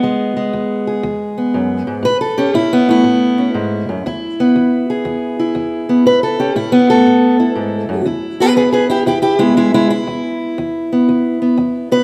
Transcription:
0.00 0.50 E2 medium
0.00 0.35 G#3 soft
0.00 1.04 B3 medium
0.37 2.02 G#3 soft
0.53 1.00 E2 medium
0.87 2.02 G#4 soft
1.03 1.51 E2 medium
1.38 2.04 B3 soft
1.54 1.87 F#2 medium
1.87 2.04 G#2 medium
2.03 2.50 A2 medium
2.03 2.20 B4 medium
2.21 2.54 A4 medium
2.38 3.37 C#4 medium
2.38 2.54 G4 medium
2.54 3.01 A2 medium
2.54 2.88 E4 medium
2.73 3.39 B3 medium
2.89 4.03 A3 soft
2.89 4.05 E4 medium
3.04 3.51 A2 medium
3.38 4.03 C#4 soft
3.54 3.88 G#2 medium
3.89 4.05 F#2 medium
4.06 4.52 E2 medium
4.06 5.39 E4 medium
4.40 5.88 B3 medium
4.56 5.02 E2 medium
4.90 6.04 G#4 medium
5.05 5.52 E2 medium
5.39 6.39 E4 medium
5.55 6.02 E2 medium
5.89 6.04 B3 medium
6.06 6.52 A2 medium
6.06 6.23 B4 medium
6.23 6.56 A4 medium
6.40 8.04 C#4 soft
6.40 6.56 G4 medium
6.56 7.03 A2 medium
6.56 6.89 E4 medium
6.72 7.39 B3 medium
6.90 8.05 A3 soft
6.90 8.07 A4 medium
7.06 7.53 A2 medium
7.40 8.06 E4 soft
7.55 7.88 G#2 medium
7.89 8.05 F#2 medium
8.05 8.53 E2 medium
8.05 8.90 E4 soft
8.40 9.40 B3 soft
8.40 8.48 G#4 medium
8.40 8.56 B4 medium
8.56 9.03 E2 medium
8.56 8.62 G#4 medium
8.56 8.72 B4 medium
8.72 8.84 G#4 medium
8.72 8.90 B4 medium
8.90 8.98 E4 medium
8.90 9.06 G4 medium
9.06 9.53 E2 medium
9.06 9.12 E4 medium
9.06 9.21 G4 medium
9.22 9.34 E4 medium
9.22 9.40 G4 medium
9.39 9.55 G#3 medium
9.39 10.92 B3 soft
9.39 9.56 E4 medium
9.57 10.04 E2 medium
9.57 9.73 G#3 medium
9.57 9.73 E4 medium
9.74 9.91 G#3 medium
9.74 9.89 E4 medium
9.90 11.91 E4 medium
10.07 10.54 E2 medium
10.58 11.05 E2 medium
10.92 11.41 B3 soft
11.09 11.55 E2 medium
11.42 11.91 B3 soft
11.57 12.04 E2 medium
11.92 12.04 B3 soft
11.92 12.04 B4 loud

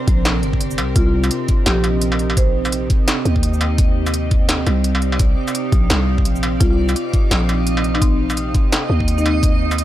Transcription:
0.00 9.84 C3 medium
0.00 0.97 C4 medium
0.00 9.84 C4 medium
0.00 0.98 D4 medium
0.00 9.84 G4 medium
0.00 2.21 A#4 medium
0.08 0.44 A#1 loud
0.08 kick loud
0.08 closed hi-hat soft
0.25 snare loud
0.43 0.80 G1 medium
0.43 closed hi-hat soft
0.53 kick medium
0.61 closed hi-hat medium
0.71 shaker medium
0.78 0.95 C2 medium
0.78 closed hi-hat soft
0.78 struck metal medium
0.95 1.30 C2 loud
0.95 9.84 D#4 medium
0.95 1.03 F4 medium
0.95 3.80 D#5 medium
0.95 kick loud
0.95 closed hi-hat medium
0.95 shaker soft
1.06 1.11 F4 medium
1.24 struck metal medium
1.24 shaker medium
1.31 closed hi-hat medium
1.48 kick loud
1.48 closed hi-hat soft
1.66 2.89 A#1 medium
1.66 1.88 G4 medium
1.66 snare loud
1.66 closed hi-hat medium
1.84 closed hi-hat soft
1.84 struck metal medium
2.02 closed hi-hat medium
2.12 struck metal medium
2.19 closed hi-hat soft
2.30 struck metal medium
2.37 2.65 C5 medium
2.37 kick loud
2.37 closed hi-hat medium
2.37 shaker soft
2.65 struck metal medium
2.65 shaker medium
2.72 closed hi-hat medium
2.90 9.84 F5 medium
2.90 kick loud
2.90 closed hi-hat soft
3.08 snare loud
3.08 closed hi-hat medium
3.25 4.66 D#2 medium
3.25 closed hi-hat soft
3.36 kick medium
3.43 closed hi-hat medium
3.54 shaker medium
3.61 closed hi-hat soft
3.61 struck metal medium
3.78 6.63 D5 medium
3.78 kick loud
3.78 closed hi-hat medium
3.78 shaker soft
4.06 struck metal medium
4.06 shaker medium
4.14 closed hi-hat medium
4.31 kick loud
4.31 closed hi-hat soft
4.49 snare loud
4.49 closed hi-hat medium
4.67 5.36 C2 medium
4.67 closed hi-hat soft
4.67 struck metal medium
4.84 closed hi-hat medium
4.95 struck metal medium
5.02 closed hi-hat soft
5.12 struck metal medium
5.19 kick loud
5.19 closed hi-hat medium
5.19 shaker soft
5.48 struck metal soft
5.48 shaker medium
5.55 closed hi-hat medium
5.72 5.89 A#1 medium
5.72 kick loud
5.72 closed hi-hat soft
5.90 6.27 C2 loud
5.90 snare loud
5.90 closed hi-hat medium
6.18 kick medium
6.25 6.60 A#1 medium
6.25 closed hi-hat medium
6.36 shaker medium
6.43 closed hi-hat soft
6.43 struck metal medium
6.60 6.95 C2 loud
6.60 6.67 F4 medium
6.60 9.45 D#5 medium
6.60 kick loud
6.60 closed hi-hat medium
6.60 shaker soft
6.71 6.75 F4 medium
6.89 struck metal soft
6.89 shaker medium
6.96 closed hi-hat medium
7.14 kick loud
7.14 closed hi-hat soft
7.31 8.54 A#1 medium
7.31 snare loud
7.31 closed hi-hat medium
7.49 closed hi-hat soft
7.49 struck metal medium
7.67 closed hi-hat medium
7.77 struck metal medium
7.84 closed hi-hat soft
7.94 8.00 D#4 medium
7.94 struck metal medium
8.01 8.23 C4 medium
8.01 kick loud
8.01 closed hi-hat medium
8.01 shaker soft
8.30 struck metal medium
8.30 shaker medium
8.37 closed hi-hat medium
8.55 kick loud
8.55 closed hi-hat soft
8.72 snare loud
8.72 closed hi-hat medium
8.90 9.84 D#2 medium
9.00 kick medium
9.08 closed hi-hat medium
9.18 9.67 D#4 medium
9.18 shaker medium
9.26 closed hi-hat soft
9.26 struck metal medium
9.42 9.84 G4 medium
9.42 kick loud
9.42 closed hi-hat medium
9.42 shaker soft
9.71 struck metal medium
9.71 shaker medium
9.78 closed hi-hat medium

